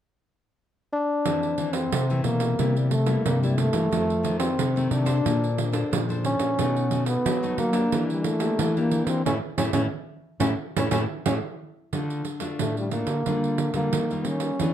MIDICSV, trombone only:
0, 0, Header, 1, 2, 480
1, 0, Start_track
1, 0, Key_signature, -1, "minor"
1, 0, Tempo, 667408
1, 904, Time_signature, 4, 2, 24, 8
1, 10598, End_track
2, 0, Start_track
2, 0, Title_t, "Trombone"
2, 0, Program_c, 0, 57
2, 665, Note_on_c, 0, 62, 102
2, 1248, Note_on_c, 0, 60, 89
2, 1259, Note_off_c, 0, 62, 0
2, 1613, Note_off_c, 0, 60, 0
2, 1617, Note_on_c, 0, 58, 94
2, 1992, Note_on_c, 0, 55, 77
2, 2003, Note_off_c, 0, 58, 0
2, 2088, Note_off_c, 0, 55, 0
2, 2092, Note_on_c, 0, 57, 90
2, 2320, Note_off_c, 0, 57, 0
2, 2342, Note_on_c, 0, 58, 84
2, 2454, Note_off_c, 0, 58, 0
2, 2472, Note_on_c, 0, 55, 82
2, 2575, Note_on_c, 0, 57, 103
2, 2585, Note_off_c, 0, 55, 0
2, 3155, Note_off_c, 0, 57, 0
2, 3159, Note_on_c, 0, 60, 84
2, 3534, Note_on_c, 0, 62, 88
2, 3544, Note_off_c, 0, 60, 0
2, 4257, Note_off_c, 0, 62, 0
2, 4499, Note_on_c, 0, 61, 110
2, 5071, Note_off_c, 0, 61, 0
2, 5086, Note_on_c, 0, 59, 93
2, 5428, Note_off_c, 0, 59, 0
2, 5459, Note_on_c, 0, 58, 86
2, 5794, Note_off_c, 0, 58, 0
2, 5832, Note_on_c, 0, 55, 80
2, 5933, Note_on_c, 0, 57, 99
2, 5943, Note_off_c, 0, 55, 0
2, 6312, Note_on_c, 0, 58, 83
2, 6322, Note_off_c, 0, 57, 0
2, 6522, Note_on_c, 0, 60, 90
2, 6532, Note_off_c, 0, 58, 0
2, 6651, Note_off_c, 0, 60, 0
2, 6661, Note_on_c, 0, 61, 97
2, 6718, Note_off_c, 0, 61, 0
2, 6889, Note_on_c, 0, 61, 93
2, 6950, Note_off_c, 0, 61, 0
2, 7000, Note_on_c, 0, 61, 92
2, 7064, Note_off_c, 0, 61, 0
2, 7481, Note_on_c, 0, 61, 90
2, 7544, Note_off_c, 0, 61, 0
2, 7744, Note_on_c, 0, 61, 87
2, 7801, Note_off_c, 0, 61, 0
2, 7849, Note_on_c, 0, 61, 97
2, 7910, Note_off_c, 0, 61, 0
2, 8097, Note_on_c, 0, 61, 86
2, 8156, Note_off_c, 0, 61, 0
2, 9062, Note_on_c, 0, 57, 74
2, 9174, Note_off_c, 0, 57, 0
2, 9194, Note_on_c, 0, 55, 75
2, 9295, Note_off_c, 0, 55, 0
2, 9299, Note_on_c, 0, 58, 81
2, 9873, Note_off_c, 0, 58, 0
2, 9896, Note_on_c, 0, 58, 80
2, 10261, Note_on_c, 0, 61, 86
2, 10271, Note_off_c, 0, 58, 0
2, 10598, Note_off_c, 0, 61, 0
2, 10598, End_track
0, 0, End_of_file